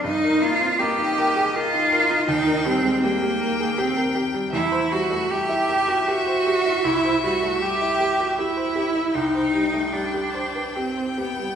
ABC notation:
X:1
M:3/4
L:1/16
Q:1/4=79
K:Eb
V:1 name="Violin"
e4 e8 | g4 g8 | [K:Clyd] e12- | e12 |
g12 |]
V:2 name="Grand piano"
G,, B B, C B, E B A B E B E | E,, B G, A, G, G B A G B G G, | [K:Clyd] E,, c G, A, G, E G F G c G E | C,, c G, A, G, E G F G c G E |
C,, c G, A, G, G c B G c G G, |]
V:3 name="Cello"
E2 F2 G4 F4 | E2 C2 B,4 C2 z2 | [K:Clyd] E2 F2 G4 F4 | E2 F2 G4 E4 |
_E4 D4 C2 B,2 |]